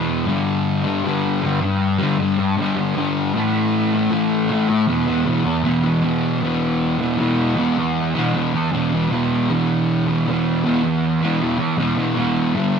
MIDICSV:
0, 0, Header, 1, 3, 480
1, 0, Start_track
1, 0, Key_signature, 1, "minor"
1, 0, Tempo, 769231
1, 158, Time_signature, 4, 2, 24, 8
1, 7984, End_track
2, 0, Start_track
2, 0, Title_t, "Distorted electric guitar"
2, 0, Program_c, 0, 30
2, 0, Note_on_c, 0, 40, 78
2, 0, Note_on_c, 0, 47, 81
2, 0, Note_on_c, 0, 52, 86
2, 147, Note_off_c, 0, 40, 0
2, 153, Note_off_c, 0, 47, 0
2, 159, Note_off_c, 0, 52, 0
2, 161, Note_on_c, 0, 43, 101
2, 173, Note_on_c, 0, 50, 109
2, 182, Note_on_c, 0, 55, 113
2, 519, Note_off_c, 0, 55, 0
2, 521, Note_on_c, 0, 55, 78
2, 537, Note_off_c, 0, 50, 0
2, 544, Note_on_c, 0, 50, 67
2, 636, Note_off_c, 0, 43, 0
2, 643, Note_on_c, 0, 43, 97
2, 650, Note_off_c, 0, 50, 0
2, 658, Note_on_c, 0, 50, 98
2, 662, Note_off_c, 0, 55, 0
2, 665, Note_on_c, 0, 55, 105
2, 881, Note_off_c, 0, 43, 0
2, 888, Note_on_c, 0, 43, 83
2, 893, Note_off_c, 0, 50, 0
2, 900, Note_on_c, 0, 50, 87
2, 907, Note_off_c, 0, 55, 0
2, 910, Note_on_c, 0, 55, 75
2, 1004, Note_off_c, 0, 50, 0
2, 1004, Note_off_c, 0, 55, 0
2, 1237, Note_on_c, 0, 55, 74
2, 1244, Note_off_c, 0, 43, 0
2, 1258, Note_on_c, 0, 50, 66
2, 1360, Note_on_c, 0, 43, 83
2, 1362, Note_off_c, 0, 50, 0
2, 1370, Note_on_c, 0, 50, 85
2, 1377, Note_off_c, 0, 55, 0
2, 1380, Note_on_c, 0, 55, 86
2, 1480, Note_off_c, 0, 50, 0
2, 1484, Note_off_c, 0, 55, 0
2, 1596, Note_off_c, 0, 43, 0
2, 1604, Note_on_c, 0, 43, 89
2, 1614, Note_on_c, 0, 50, 94
2, 1624, Note_on_c, 0, 55, 109
2, 1718, Note_off_c, 0, 55, 0
2, 1721, Note_on_c, 0, 55, 76
2, 1736, Note_off_c, 0, 50, 0
2, 1743, Note_on_c, 0, 50, 68
2, 1833, Note_off_c, 0, 43, 0
2, 1841, Note_on_c, 0, 43, 79
2, 1846, Note_off_c, 0, 50, 0
2, 1853, Note_on_c, 0, 50, 83
2, 1858, Note_off_c, 0, 55, 0
2, 1860, Note_on_c, 0, 55, 82
2, 2067, Note_off_c, 0, 43, 0
2, 2073, Note_off_c, 0, 50, 0
2, 2082, Note_on_c, 0, 45, 100
2, 2092, Note_off_c, 0, 55, 0
2, 2095, Note_on_c, 0, 52, 101
2, 2103, Note_on_c, 0, 57, 108
2, 2437, Note_off_c, 0, 57, 0
2, 2444, Note_on_c, 0, 57, 80
2, 2457, Note_off_c, 0, 52, 0
2, 2465, Note_on_c, 0, 52, 68
2, 2552, Note_off_c, 0, 45, 0
2, 2559, Note_on_c, 0, 45, 93
2, 2563, Note_off_c, 0, 52, 0
2, 2570, Note_on_c, 0, 52, 95
2, 2575, Note_off_c, 0, 57, 0
2, 2582, Note_on_c, 0, 57, 102
2, 2795, Note_off_c, 0, 45, 0
2, 2803, Note_on_c, 0, 45, 76
2, 2806, Note_off_c, 0, 52, 0
2, 2812, Note_off_c, 0, 57, 0
2, 2814, Note_on_c, 0, 52, 79
2, 2819, Note_on_c, 0, 57, 86
2, 2916, Note_off_c, 0, 57, 0
2, 2923, Note_off_c, 0, 52, 0
2, 3028, Note_off_c, 0, 45, 0
2, 3038, Note_on_c, 0, 40, 95
2, 3049, Note_on_c, 0, 47, 97
2, 3060, Note_on_c, 0, 52, 108
2, 3151, Note_off_c, 0, 52, 0
2, 3159, Note_on_c, 0, 52, 72
2, 3172, Note_off_c, 0, 47, 0
2, 3179, Note_on_c, 0, 47, 65
2, 3270, Note_off_c, 0, 40, 0
2, 3278, Note_on_c, 0, 40, 82
2, 3282, Note_off_c, 0, 47, 0
2, 3289, Note_on_c, 0, 47, 82
2, 3293, Note_off_c, 0, 52, 0
2, 3300, Note_on_c, 0, 52, 90
2, 3397, Note_off_c, 0, 52, 0
2, 3400, Note_off_c, 0, 47, 0
2, 3508, Note_off_c, 0, 40, 0
2, 3515, Note_on_c, 0, 40, 92
2, 3531, Note_on_c, 0, 47, 103
2, 3541, Note_on_c, 0, 52, 104
2, 3635, Note_off_c, 0, 52, 0
2, 3643, Note_on_c, 0, 52, 70
2, 3658, Note_off_c, 0, 47, 0
2, 3666, Note_on_c, 0, 47, 55
2, 3750, Note_off_c, 0, 40, 0
2, 3758, Note_on_c, 0, 40, 84
2, 3764, Note_off_c, 0, 47, 0
2, 3771, Note_on_c, 0, 47, 81
2, 3773, Note_off_c, 0, 52, 0
2, 3781, Note_on_c, 0, 52, 89
2, 3985, Note_off_c, 0, 40, 0
2, 3992, Note_off_c, 0, 47, 0
2, 3997, Note_off_c, 0, 52, 0
2, 4001, Note_on_c, 0, 40, 98
2, 4010, Note_on_c, 0, 47, 112
2, 4021, Note_on_c, 0, 52, 113
2, 4353, Note_off_c, 0, 52, 0
2, 4355, Note_on_c, 0, 52, 75
2, 4369, Note_off_c, 0, 47, 0
2, 4376, Note_on_c, 0, 47, 71
2, 4471, Note_off_c, 0, 40, 0
2, 4474, Note_on_c, 0, 40, 87
2, 4480, Note_off_c, 0, 47, 0
2, 4487, Note_on_c, 0, 47, 98
2, 4493, Note_off_c, 0, 52, 0
2, 4495, Note_on_c, 0, 52, 113
2, 4711, Note_off_c, 0, 40, 0
2, 4714, Note_on_c, 0, 40, 83
2, 4720, Note_off_c, 0, 47, 0
2, 4727, Note_on_c, 0, 47, 78
2, 4733, Note_off_c, 0, 52, 0
2, 4736, Note_on_c, 0, 52, 76
2, 4844, Note_off_c, 0, 52, 0
2, 4847, Note_off_c, 0, 47, 0
2, 5077, Note_off_c, 0, 40, 0
2, 5080, Note_on_c, 0, 52, 79
2, 5101, Note_on_c, 0, 47, 62
2, 5196, Note_on_c, 0, 40, 89
2, 5203, Note_off_c, 0, 47, 0
2, 5210, Note_on_c, 0, 47, 82
2, 5212, Note_off_c, 0, 52, 0
2, 5219, Note_on_c, 0, 52, 95
2, 5321, Note_off_c, 0, 52, 0
2, 5325, Note_off_c, 0, 47, 0
2, 5432, Note_off_c, 0, 40, 0
2, 5440, Note_on_c, 0, 40, 100
2, 5450, Note_on_c, 0, 47, 96
2, 5460, Note_on_c, 0, 52, 108
2, 5551, Note_off_c, 0, 52, 0
2, 5558, Note_on_c, 0, 52, 83
2, 5572, Note_off_c, 0, 47, 0
2, 5580, Note_on_c, 0, 47, 63
2, 5669, Note_off_c, 0, 40, 0
2, 5676, Note_on_c, 0, 40, 78
2, 5678, Note_off_c, 0, 47, 0
2, 5686, Note_off_c, 0, 52, 0
2, 5686, Note_on_c, 0, 47, 87
2, 5693, Note_on_c, 0, 52, 93
2, 5915, Note_off_c, 0, 40, 0
2, 5922, Note_on_c, 0, 40, 92
2, 5926, Note_off_c, 0, 47, 0
2, 5933, Note_on_c, 0, 47, 107
2, 5934, Note_off_c, 0, 52, 0
2, 5941, Note_on_c, 0, 52, 114
2, 6273, Note_off_c, 0, 52, 0
2, 6281, Note_on_c, 0, 52, 77
2, 6297, Note_off_c, 0, 47, 0
2, 6304, Note_on_c, 0, 47, 63
2, 6397, Note_off_c, 0, 40, 0
2, 6405, Note_on_c, 0, 40, 101
2, 6410, Note_off_c, 0, 47, 0
2, 6417, Note_off_c, 0, 52, 0
2, 6417, Note_on_c, 0, 47, 99
2, 6424, Note_on_c, 0, 52, 103
2, 6625, Note_off_c, 0, 40, 0
2, 6632, Note_on_c, 0, 40, 79
2, 6635, Note_off_c, 0, 47, 0
2, 6642, Note_on_c, 0, 47, 83
2, 6645, Note_off_c, 0, 52, 0
2, 6653, Note_on_c, 0, 52, 90
2, 6753, Note_off_c, 0, 52, 0
2, 6759, Note_off_c, 0, 47, 0
2, 6995, Note_off_c, 0, 40, 0
2, 6996, Note_on_c, 0, 52, 80
2, 7019, Note_on_c, 0, 47, 64
2, 7107, Note_on_c, 0, 40, 85
2, 7110, Note_off_c, 0, 47, 0
2, 7117, Note_on_c, 0, 47, 85
2, 7120, Note_off_c, 0, 52, 0
2, 7128, Note_on_c, 0, 52, 95
2, 7223, Note_off_c, 0, 52, 0
2, 7227, Note_off_c, 0, 47, 0
2, 7340, Note_off_c, 0, 40, 0
2, 7347, Note_on_c, 0, 40, 95
2, 7360, Note_on_c, 0, 47, 108
2, 7368, Note_on_c, 0, 52, 109
2, 7454, Note_off_c, 0, 52, 0
2, 7462, Note_on_c, 0, 52, 70
2, 7474, Note_off_c, 0, 47, 0
2, 7481, Note_on_c, 0, 47, 63
2, 7575, Note_off_c, 0, 40, 0
2, 7583, Note_on_c, 0, 40, 75
2, 7589, Note_off_c, 0, 47, 0
2, 7595, Note_off_c, 0, 52, 0
2, 7596, Note_on_c, 0, 47, 86
2, 7603, Note_on_c, 0, 52, 85
2, 7815, Note_off_c, 0, 40, 0
2, 7822, Note_off_c, 0, 47, 0
2, 7822, Note_on_c, 0, 43, 106
2, 7825, Note_off_c, 0, 52, 0
2, 7837, Note_on_c, 0, 50, 106
2, 7845, Note_on_c, 0, 55, 113
2, 7984, Note_off_c, 0, 43, 0
2, 7984, Note_off_c, 0, 50, 0
2, 7984, Note_off_c, 0, 55, 0
2, 7984, End_track
3, 0, Start_track
3, 0, Title_t, "Muted distorted electric guitar strokes"
3, 1007, Note_on_c, 9, 29, 56
3, 1069, Note_off_c, 9, 29, 0
3, 1486, Note_on_c, 9, 29, 55
3, 1549, Note_off_c, 9, 29, 0
3, 2924, Note_on_c, 9, 29, 50
3, 2986, Note_off_c, 9, 29, 0
3, 3405, Note_on_c, 9, 29, 53
3, 3467, Note_off_c, 9, 29, 0
3, 4851, Note_on_c, 9, 29, 51
3, 4913, Note_off_c, 9, 29, 0
3, 5328, Note_on_c, 9, 29, 60
3, 5391, Note_off_c, 9, 29, 0
3, 6761, Note_on_c, 9, 29, 54
3, 6823, Note_off_c, 9, 29, 0
3, 7230, Note_on_c, 9, 29, 61
3, 7293, Note_off_c, 9, 29, 0
3, 7984, End_track
0, 0, End_of_file